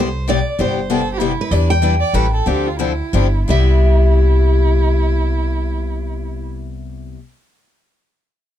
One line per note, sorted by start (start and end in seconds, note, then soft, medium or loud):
0.00 0.40 C2 medium
0.00 0.29 C5 medium
0.28 0.38 C3 medium
0.28 0.39 G3 medium
0.28 0.39 B3 medium
0.28 0.39 E4 medium
0.28 0.39 G4 medium
0.28 0.60 D5 medium
0.59 1.33 G1 medium
0.59 0.78 C3 medium
0.59 0.79 G3 medium
0.59 0.79 B3 medium
0.59 0.79 E4 medium
0.59 0.79 G4 medium
0.59 1.18 C5 medium
0.90 1.00 C3 medium
0.90 1.01 G3 medium
0.90 1.01 B3 medium
0.90 1.01 E4 medium
0.90 1.01 G4 medium
0.90 1.13 A4 medium
1.13 1.20 G4 medium
1.19 1.31 C3 medium
1.19 1.32 G3 medium
1.19 1.32 B3 medium
1.19 1.51 E4 medium
1.19 1.32 E4 medium
1.19 1.32 G4 medium
1.41 1.51 B4 medium
1.51 2.01 E2 medium
1.51 1.71 E3 medium
1.51 1.72 G3 medium
1.51 1.72 D4 medium
1.51 1.72 E4 medium
1.51 1.72 B4 medium
1.51 1.70 D5 loud
1.70 3.10 G5 loud
1.82 1.93 E3 medium
1.82 1.94 G3 medium
1.82 1.94 D4 medium
1.82 1.94 E4 medium
1.82 1.94 B4 medium
2.00 2.16 D5 loud
2.13 2.40 A1 medium
2.13 2.25 E3 medium
2.13 2.26 G3 medium
2.13 2.26 C#4 medium
2.13 2.25 E4 medium
2.13 2.26 A4 loud
2.13 2.33 B4 medium
2.34 2.49 A4 medium
2.46 3.00 D2 medium
2.46 2.67 D3 medium
2.46 2.67 F3 medium
2.46 2.68 C4 medium
2.46 2.68 D4 medium
2.46 2.68 G4 medium
2.46 2.68 A4 medium
2.67 2.79 F4 medium
2.79 2.91 D3 medium
2.79 2.91 F3 medium
2.79 2.91 C4 medium
2.79 2.92 D4 medium
2.79 3.46 E4 medium
2.79 2.92 A4 medium
3.13 3.42 G1 medium
3.13 3.26 C3 medium
3.13 3.26 F3 medium
3.13 3.26 C4 medium
3.13 3.26 D4 medium
3.13 3.26 G4 medium
3.48 7.14 C2 medium
3.48 7.17 C3 medium
3.48 7.18 G3 medium
3.48 7.18 B3 medium
3.48 6.44 E4 medium
3.48 7.19 E4 medium
3.48 7.19 G4 medium
3.48 7.15 E5 medium